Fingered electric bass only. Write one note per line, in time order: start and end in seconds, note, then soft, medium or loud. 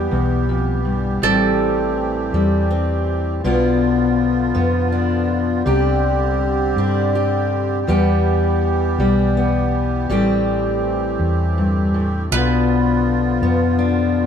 0.12 1.18 B1 medium
1.22 2.29 A1 loud
2.33 3.40 E2 medium
3.44 4.51 B1 loud
4.55 5.62 F2 medium
5.66 6.73 C2 loud
6.76 7.83 G2 loud
7.88 8.95 E2 loud
8.98 10.05 B1 loud
10.09 11.16 A1 loud
11.19 12.27 E2 medium
12.31 13.38 B1 loud
13.42 14.26 F2 loud